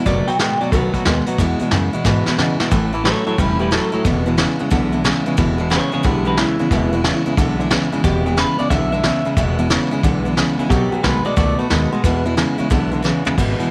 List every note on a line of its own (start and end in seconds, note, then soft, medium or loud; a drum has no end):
0.06 0.27 F#1 medium
0.06 0.27 B2 medium
0.06 0.26 B2 medium
0.06 0.28 D#3 medium
0.06 0.26 F#3 medium
0.06 0.28 A3 medium
0.06 0.28 B3 medium
0.06 0.26 F#4 medium
0.06 0.27 D5 medium
0.06 kick loud
0.06 closed hi-hat medium
0.27 0.38 B2 medium
0.27 0.39 F#3 medium
0.27 0.39 A3 soft
0.27 0.40 B3 medium
0.27 0.39 F#4 medium
0.27 0.38 G5 medium
0.27 muted upright bass stroke medium
0.27 closed hi-hat medium
0.39 0.59 A1 loud
0.39 0.59 B2 medium
0.39 0.61 D#3 medium
0.39 0.59 G#3 medium
0.39 0.62 A3 medium
0.39 0.61 B3 medium
0.39 0.60 F#4 medium
0.39 0.60 G5 medium
0.39 snare loud
0.39 closed hi-hat medium
0.61 0.71 B2 medium
0.61 0.72 F#3 medium
0.61 0.72 A3 soft
0.61 0.72 B3 medium
0.61 0.73 F#4 medium
0.61 0.72 D5 medium
0.61 muted upright bass stroke soft
0.72 0.93 B1 medium
0.72 0.94 B2 medium
0.72 0.92 B2 medium
0.72 0.94 D#3 medium
0.72 0.92 F#3 loud
0.72 0.94 A3 medium
0.72 0.94 B3 medium
0.72 0.93 F#4 medium
0.72 1.37 B4 loud
0.72 kick loud
0.72 closed hi-hat medium
0.94 1.05 B2 medium
0.94 1.05 F#3 medium
0.94 1.06 A3 soft
0.94 1.06 B3 soft
0.94 1.06 F#4 medium
0.94 kick medium
0.94 closed hi-hat medium
1.05 1.26 D#2 medium
1.05 1.25 B2 medium
1.05 1.27 D#3 medium
1.05 1.26 G#3 medium
1.05 1.28 A3 medium
1.05 1.27 B3 medium
1.05 1.25 F#4 medium
1.05 snare loud
1.05 closed hi-hat medium
1.26 1.38 B2 medium
1.26 1.38 F#3 medium
1.26 1.40 A3 soft
1.26 1.39 B3 medium
1.26 1.39 F#4 medium
1.26 closed hi-hat medium
1.38 1.60 E2 medium
1.38 1.58 E2 medium
1.38 1.61 E2 medium
1.38 1.58 B2 medium
1.38 1.61 B2 medium
1.38 1.61 E3 medium
1.38 1.61 G#3 medium
1.38 1.60 B3 medium
1.38 1.59 E4 loud
1.38 kick loud
1.38 closed hi-hat medium
1.59 1.71 E2 medium
1.59 1.71 B2 medium
1.59 1.70 E3 soft
1.59 1.71 G#3 medium
1.59 1.72 B3 medium
1.59 1.72 E4 medium
1.59 muted upright bass stroke medium
1.59 closed hi-hat medium
1.71 1.92 E2 medium
1.71 1.93 F#2 loud
1.71 1.92 C#3 medium
1.71 1.93 E3 medium
1.71 1.93 G#3 medium
1.71 1.93 B3 medium
1.71 1.92 E4 medium
1.71 snare loud
1.71 closed hi-hat medium
1.93 2.04 E2 medium
1.93 2.05 B2 medium
1.93 2.04 E3 medium
1.93 2.05 G#3 medium
1.93 2.05 B3 medium
1.93 2.05 E4 medium
1.93 muted upright bass stroke medium
2.04 2.27 E2 medium
2.04 2.25 E2 medium
2.04 2.26 G#2 medium
2.04 2.27 B2 medium
2.04 2.25 B2 medium
2.04 2.27 E3 medium
2.04 2.27 G#3 loud
2.04 2.27 B3 loud
2.04 2.26 E4 medium
2.04 kick loud
2.04 snare medium
2.26 2.38 E2 medium
2.26 2.38 B2 medium
2.26 2.37 E3 medium
2.26 2.38 G#3 medium
2.26 2.39 B3 medium
2.26 2.39 E4 medium
2.26 muted upright bass stroke medium
2.26 snare medium
2.38 2.58 E2 medium
2.38 2.59 B2 medium
2.38 2.59 C#3 medium
2.38 2.60 E3 medium
2.38 2.60 G#3 medium
2.38 2.60 B3 medium
2.38 2.59 E4 medium
2.38 snare medium
2.60 2.71 E2 medium
2.60 2.71 B2 medium
2.60 2.70 E3 medium
2.60 2.72 G#3 medium
2.60 2.72 B3 medium
2.60 2.71 E4 medium
2.60 muted upright bass stroke medium
2.60 snare medium
2.71 3.10 A1 medium
2.71 2.93 A2 medium
2.71 2.91 A2 medium
2.71 2.93 E3 medium
2.71 2.92 E3 medium
2.71 2.94 A3 medium
2.71 2.93 C#4 medium
2.71 2.91 E4 medium
2.71 kick loud
2.71 open hi-hat medium
2.93 3.04 A2 medium
2.93 3.04 E3 medium
2.93 3.05 A3 medium
2.93 3.05 C#4 medium
2.93 3.05 E4 medium
3.04 3.25 A2 medium
3.04 3.27 E3 medium
3.04 3.25 F#3 medium
3.04 3.27 A3 medium
3.04 3.27 C#4 medium
3.04 3.25 E4 medium
3.04 3.25 A4 medium
3.04 3.26 C#5 medium
3.04 snare loud
3.04 open hi-hat medium
3.26 3.37 A2 medium
3.26 3.37 F#3 medium
3.26 3.38 A3 soft
3.26 3.38 C#4 medium
3.26 3.38 E4 medium
3.26 3.38 A4 medium
3.26 3.39 C#5 medium
3.26 muted upright bass stroke medium
3.38 3.77 E1 medium
3.38 3.58 A2 medium
3.38 3.60 A2 medium
3.38 3.60 E3 medium
3.38 3.58 G3 medium
3.38 3.60 A3 medium
3.38 3.59 C#4 medium
3.38 3.58 E4 medium
3.38 3.59 G4 medium
3.38 3.60 B4 medium
3.38 kick loud
3.38 open hi-hat medium
3.59 3.70 A2 medium
3.59 3.71 G3 medium
3.59 3.70 A3 soft
3.59 3.71 C#4 soft
3.59 3.71 E4 soft
3.59 3.71 G4 medium
3.59 3.72 B4 medium
3.71 3.91 A2 medium
3.71 3.93 E3 medium
3.71 3.91 F#3 loud
3.71 3.93 A3 medium
3.71 3.92 C#4 medium
3.71 3.91 E4 medium
3.71 4.04 A4 medium
3.71 snare loud
3.92 4.04 A2 medium
3.92 4.04 F#3 medium
3.92 4.05 A3 soft
3.92 4.05 C#4 soft
3.92 4.04 E4 medium
3.92 muted upright bass stroke medium
4.05 4.43 E1 medium
4.05 4.26 E2 medium
4.05 4.25 E2 medium
4.05 4.26 B2 medium
4.05 4.25 B2 medium
4.05 4.27 E3 medium
4.05 4.26 G#3 medium
4.05 4.25 B3 medium
4.05 4.25 E4 medium
4.05 kick loud
4.05 open hi-hat medium
4.26 4.37 E2 medium
4.26 4.37 B2 medium
4.26 4.36 E3 medium
4.26 4.37 G#3 medium
4.26 4.38 B3 medium
4.26 4.38 E4 medium
4.37 4.58 E2 medium
4.37 4.58 C#3 medium
4.37 4.59 E3 medium
4.37 4.59 G#3 medium
4.37 4.59 B3 medium
4.37 4.58 E4 medium
4.37 snare loud
4.37 open hi-hat medium
4.59 4.70 E2 medium
4.59 4.71 C#3 medium
4.59 4.70 E3 medium
4.59 4.70 G#3 medium
4.59 4.70 B3 medium
4.59 4.71 E4 medium
4.59 muted upright bass stroke medium
4.70 5.10 B1 medium
4.70 4.92 E2 medium
4.70 4.91 E2 medium
4.70 4.93 B2 loud
4.70 4.91 D3 medium
4.70 4.93 E3 medium
4.70 4.92 G#3 medium
4.70 4.92 B3 medium
4.70 4.91 E4 loud
4.70 kick loud
4.70 open hi-hat medium
4.92 5.04 E2 medium
4.92 5.04 D3 medium
4.92 5.03 E3 soft
4.92 5.04 G#3 medium
4.92 5.05 B3 medium
4.92 5.04 E4 medium
5.04 5.24 E2 medium
5.04 5.25 C#3 medium
5.04 5.26 E3 medium
5.04 5.27 G#3 medium
5.04 5.25 B3 medium
5.04 5.25 E4 medium
5.04 snare loud
5.04 open hi-hat medium
5.26 5.37 E2 medium
5.26 5.37 C#3 medium
5.26 5.36 E3 medium
5.26 5.36 G#3 medium
5.26 5.37 B3 medium
5.26 5.37 E4 medium
5.26 muted upright bass stroke medium
5.37 5.76 E1 medium
5.37 5.59 E2 medium
5.37 5.58 E2 medium
5.37 5.59 B2 medium
5.37 5.58 B2 loud
5.37 5.59 E3 loud
5.37 5.59 G#3 loud
5.37 5.58 B3 medium
5.37 5.57 E4 loud
5.37 kick loud
5.37 open hi-hat medium
5.58 5.70 E2 medium
5.58 5.71 B2 medium
5.58 5.69 E3 soft
5.58 5.70 G#3 medium
5.58 5.70 B3 medium
5.58 5.71 E4 medium
5.70 5.91 E2 medium
5.70 5.91 C#3 medium
5.70 5.92 E3 medium
5.70 5.92 G#3 medium
5.70 5.91 B3 medium
5.70 5.91 E4 medium
5.70 5.92 G#4 medium
5.70 5.92 C#5 loud
5.70 snare loud
5.70 open hi-hat medium
5.92 6.04 E2 medium
5.92 6.04 C#3 medium
5.92 6.03 E3 soft
5.92 6.03 G#3 medium
5.92 6.03 B3 medium
5.92 6.03 E4 medium
5.92 6.05 G#4 medium
5.92 6.06 C#5 medium
5.92 muted upright bass stroke medium
6.03 6.43 B1 medium
6.03 6.25 E2 medium
6.03 6.24 E2 medium
6.03 6.25 B2 medium
6.03 6.24 D3 loud
6.03 6.26 E3 medium
6.03 6.26 G#3 medium
6.03 6.25 B3 medium
6.03 6.24 E4 medium
6.03 6.25 G4 medium
6.03 6.26 B4 medium
6.03 kick loud
6.03 open hi-hat medium
6.25 6.37 E2 medium
6.25 6.37 D3 medium
6.25 6.36 E3 soft
6.25 6.37 G#3 soft
6.25 6.38 B3 medium
6.25 6.37 E4 medium
6.25 6.37 G4 medium
6.25 6.38 B4 medium
6.37 6.57 E2 medium
6.37 6.58 C#3 loud
6.37 6.59 E3 medium
6.37 6.59 G#3 medium
6.37 6.59 B3 medium
6.37 7.35 E4 medium
6.37 6.58 E4 medium
6.37 snare loud
6.59 6.70 E2 medium
6.59 6.70 C#3 medium
6.59 6.71 E3 soft
6.59 6.71 G#3 soft
6.59 6.71 B3 medium
6.59 6.71 E4 medium
6.59 muted upright bass stroke medium
6.71 7.09 E1 loud
6.71 6.90 E2 medium
6.71 6.93 E2 medium
6.71 6.93 B2 medium
6.71 6.91 B2 loud
6.71 6.93 E3 medium
6.71 6.93 G#3 medium
6.71 6.92 B3 medium
6.71 6.91 E4 medium
6.71 kick loud
6.71 open hi-hat soft
6.92 7.03 E2 medium
6.92 7.03 B2 medium
6.92 7.03 E3 soft
6.92 7.05 G#3 medium
6.92 7.05 B3 medium
6.92 7.04 E4 medium
7.04 7.24 E2 medium
7.04 7.24 C#3 medium
7.04 7.26 E3 medium
7.04 7.26 G#3 medium
7.04 7.25 B3 medium
7.04 7.25 E4 medium
7.04 snare loud
7.04 open hi-hat medium
7.26 7.36 E2 medium
7.26 7.37 C#3 medium
7.26 7.37 E3 medium
7.26 7.37 G#3 medium
7.26 7.38 B3 medium
7.26 7.38 E4 medium
7.26 muted upright bass stroke medium
7.37 7.76 B1 medium
7.37 7.57 E2 medium
7.37 7.59 E2 medium
7.37 7.59 B2 loud
7.37 7.57 D3 medium
7.37 7.60 E3 medium
7.37 7.60 G#3 medium
7.37 7.60 B3 loud
7.37 7.59 E4 loud
7.37 kick loud
7.37 open hi-hat medium
7.59 7.69 E2 medium
7.59 7.70 D3 medium
7.59 7.69 E3 medium
7.59 7.70 G#3 soft
7.59 7.71 B3 medium
7.59 7.71 E4 medium
7.71 7.90 E2 medium
7.71 7.90 C#3 loud
7.71 7.92 E3 medium
7.71 7.93 G#3 medium
7.71 7.92 B3 medium
7.71 7.91 E4 medium
7.71 snare loud
7.92 8.03 E2 medium
7.92 8.03 C#3 medium
7.92 8.03 E3 medium
7.92 8.03 G#3 medium
7.92 8.03 B3 medium
7.92 8.04 E4 medium
7.92 muted upright bass stroke medium
8.04 8.43 E1 medium
8.04 8.26 E2 medium
8.04 8.23 E2 medium
8.04 8.26 B2 medium
8.04 8.24 B2 medium
8.04 8.26 E3 medium
8.04 8.26 G#3 medium
8.04 8.25 B3 medium
8.04 8.25 E4 medium
8.04 8.36 G4 loud
8.04 kick loud
8.04 open hi-hat medium
8.26 8.36 E2 medium
8.26 8.36 B2 medium
8.26 8.36 E3 soft
8.26 8.37 G#3 soft
8.26 8.37 B3 medium
8.26 8.38 E4 medium
8.37 8.57 E2 medium
8.37 8.57 C#3 loud
8.37 8.59 E3 medium
8.37 8.59 G#3 medium
8.37 8.58 B3 medium
8.37 8.57 E4 medium
8.37 8.58 B4 medium
8.37 snare loud
8.37 open hi-hat medium
8.59 8.69 E2 medium
8.59 8.70 C#3 medium
8.59 8.70 E3 soft
8.59 8.70 G#3 soft
8.59 8.71 B3 medium
8.59 8.71 E4 medium
8.59 8.70 D5 loud
8.59 muted upright bass stroke medium
8.70 9.09 B1 medium
8.70 8.90 E2 medium
8.70 8.92 E2 medium
8.70 8.92 B2 medium
8.70 8.90 D3 loud
8.70 8.93 E3 medium
8.70 8.93 G#3 medium
8.70 8.92 B3 medium
8.70 8.91 E4 medium
8.70 8.91 E5 medium
8.70 kick loud
8.70 open hi-hat soft
8.92 9.03 E2 medium
8.92 9.03 D3 medium
8.92 9.02 E3 soft
8.92 9.03 G#3 soft
8.92 9.04 B3 medium
8.92 9.04 E4 medium
8.92 9.57 E5 medium
9.04 9.23 E2 medium
9.04 9.24 C#3 medium
9.04 9.25 E3 medium
9.04 9.25 G#3 medium
9.04 9.25 B3 medium
9.04 9.24 E4 medium
9.04 snare loud
9.04 open hi-hat medium
9.25 9.36 E2 medium
9.25 9.36 C#3 medium
9.25 9.37 E3 soft
9.25 9.37 G#3 soft
9.25 9.37 B3 medium
9.25 9.37 E4 medium
9.25 muted upright bass stroke medium
9.36 9.75 E1 medium
9.36 9.59 E2 medium
9.36 9.57 E2 medium
9.36 9.59 B2 medium
9.36 9.57 B2 loud
9.36 9.59 E3 medium
9.36 9.59 G#3 medium
9.36 9.58 B3 medium
9.36 9.57 E4 loud
9.36 kick loud
9.36 open hi-hat soft
9.59 9.69 E2 medium
9.59 9.70 B2 medium
9.59 9.69 E3 medium
9.59 9.70 G#3 medium
9.59 9.71 B3 medium
9.59 9.70 E4 medium
9.70 9.90 E2 medium
9.70 9.90 C#3 medium
9.70 9.92 E3 medium
9.70 9.92 G#3 medium
9.70 9.91 B3 medium
9.70 9.90 E4 medium
9.70 snare loud
9.70 open hi-hat soft
9.91 10.03 E2 medium
9.91 10.03 C#3 medium
9.91 10.03 E3 medium
9.91 10.03 G#3 medium
9.91 10.04 B3 medium
9.91 10.03 E4 medium
9.91 muted upright bass stroke medium
10.03 10.42 B1 medium
10.03 10.23 E2 medium
10.03 10.25 E2 medium
10.03 10.26 B2 medium
10.03 10.23 D3 loud
10.03 10.26 E3 loud
10.03 10.26 G#3 loud
10.03 10.25 B3 medium
10.03 10.24 E4 loud
10.03 kick loud
10.03 open hi-hat soft
10.25 10.36 E2 medium
10.25 10.36 D3 medium
10.25 10.36 E3 soft
10.25 10.37 G#3 medium
10.25 10.38 B3 medium
10.25 10.37 E4 medium
10.37 10.56 E2 medium
10.37 10.57 C#3 medium
10.37 10.59 E3 medium
10.37 10.59 G#3 medium
10.37 10.59 B3 medium
10.37 10.58 E4 medium
10.37 snare loud
10.37 open hi-hat medium
10.58 10.69 E2 medium
10.58 10.70 C#3 medium
10.58 10.71 E3 medium
10.58 10.71 G#3 medium
10.58 10.70 B3 medium
10.58 10.71 E4 medium
10.58 muted upright bass stroke medium
10.70 10.86 B1 medium
10.70 10.90 B2 medium
10.70 10.92 B2 medium
10.70 10.92 D#3 medium
10.70 10.90 F#3 loud
10.70 10.93 A3 medium
10.70 10.92 B3 medium
10.70 10.91 F#4 medium
10.70 11.02 G4 loud
10.70 kick loud
10.70 open hi-hat medium
10.91 11.02 B2 medium
10.91 11.03 F#3 medium
10.91 11.03 A3 soft
10.91 11.04 B3 medium
10.91 11.04 F#4 medium
10.91 muted upright bass stroke medium
11.03 11.22 B1 medium
11.03 11.23 B2 medium
11.03 11.25 D#3 medium
11.03 11.23 G#3 loud
11.03 11.26 A3 medium
11.03 11.24 B3 medium
11.03 11.23 F#4 medium
11.03 11.24 B4 loud
11.03 snare loud
11.03 open hi-hat medium
11.25 11.36 B2 medium
11.25 11.36 G#3 medium
11.25 11.36 A3 soft
11.25 11.36 B3 medium
11.25 11.37 F#4 medium
11.25 11.36 D5 loud
11.36 11.56 C#2 medium
11.36 11.58 B2 medium
11.36 11.57 B2 medium
11.36 11.59 D#3 medium
11.36 11.59 A3 medium
11.36 11.57 A3 loud
11.36 11.59 B3 medium
11.36 11.58 F#4 medium
11.36 11.59 D5 medium
11.36 kick loud
11.36 open hi-hat medium
11.58 11.69 B2 medium
11.58 11.69 A3 medium
11.58 11.70 A3 soft
11.58 11.71 B3 soft
11.58 11.71 F#4 medium
11.58 12.23 B4 loud
11.70 11.89 D#2 medium
11.70 11.90 B2 medium
11.70 11.92 D#3 medium
11.70 11.90 G#3 medium
11.70 11.93 A3 medium
11.70 11.92 B3 medium
11.70 11.91 F#4 medium
11.70 snare loud
11.70 open hi-hat medium
11.92 12.03 B2 medium
11.92 12.03 G#3 medium
11.92 12.05 A3 soft
11.92 12.05 B3 soft
11.92 12.04 F#4 medium
12.04 12.23 E2 medium
12.04 12.42 E2 medium
12.04 12.26 E2 medium
12.04 12.24 B2 medium
12.04 12.26 B2 medium
12.04 12.26 E3 loud
12.04 12.25 G#3 medium
12.04 12.25 B3 loud
12.04 12.24 E4 loud
12.04 kick loud
12.04 open hi-hat medium
12.25 12.36 E2 medium
12.25 12.36 B2 medium
12.25 12.36 E3 medium
12.25 12.37 G#3 medium
12.25 12.37 B3 medium
12.25 12.37 E4 medium
12.37 12.57 E2 medium
12.37 12.57 C#3 medium
12.37 12.59 E3 medium
12.37 12.58 G#3 medium
12.37 12.58 B3 medium
12.37 12.57 E4 medium
12.37 snare loud
12.37 open hi-hat medium
12.58 12.69 E2 medium
12.58 12.70 C#3 medium
12.58 12.70 E3 medium
12.58 12.70 G#3 medium
12.58 12.71 B3 medium
12.58 12.70 E4 medium
12.58 muted upright bass stroke medium
12.70 13.09 B1 medium
12.70 12.92 E2 medium
12.70 12.90 E2 medium
12.70 12.92 B2 medium
12.70 12.90 D3 medium
12.70 12.92 E3 medium
12.70 12.92 G#3 loud
12.70 12.92 B3 loud
12.70 12.90 E4 loud
12.70 kick loud
12.70 open hi-hat medium
12.92 13.03 E2 medium
12.92 13.03 D3 medium
12.92 13.01 E3 soft
12.92 13.03 G#3 soft
12.92 13.03 B3 medium
12.92 13.04 E4 medium
13.02 13.24 E2 medium
13.02 13.24 C#3 medium
13.02 13.25 E3 medium
13.02 13.25 G#3 medium
13.02 13.25 B3 medium
13.02 13.24 E4 medium
13.02 snare medium
13.25 13.36 E2 medium
13.25 13.37 C#3 medium
13.25 13.38 E3 medium
13.25 13.38 G#3 medium
13.25 13.37 B3 medium
13.25 13.37 E4 medium
13.25 muted upright bass stroke medium
13.25 floor tom loud
13.38 13.59 G#1 medium
13.38 13.57 E2 medium
13.38 13.59 E2 medium
13.38 13.57 B2 medium
13.38 13.60 B2 medium
13.38 13.60 E3 medium
13.38 13.60 G#3 medium
13.38 13.59 B3 loud
13.38 13.58 E4 medium
13.38 kick loud
13.38 crash medium
13.59 13.70 E2 medium
13.59 13.70 B2 medium
13.59 13.70 E3 soft
13.59 13.71 G#3 medium
13.59 13.71 B3 medium
13.59 13.71 E4 medium
13.59 closed hi-hat medium